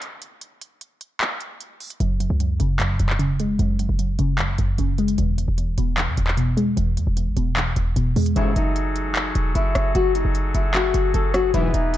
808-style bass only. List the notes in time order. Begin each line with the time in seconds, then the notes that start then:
2.00 F#1
2.30 C#2
2.60 F#1
2.90 E1
3.00 E1
3.59 F#1
3.89 F#1
4.19 F#1
4.59 F#1
4.78 F#1
5.18 E1
5.48 E1
5.78 E1
6.08 E2
6.17 E1
6.77 E1
6.97 E2
7.07 E1
7.27 G#1
7.37 E1
7.76 E1
7.96 E1
8.16 E2
8.36 F#1
8.56 F#1
9.35 E1
9.55 F#1
9.75 F#1
9.95 F#1
10.25 F#1
10.55 F#1
10.94 F#1
11.14 F#1
11.54 E1
11.74 E1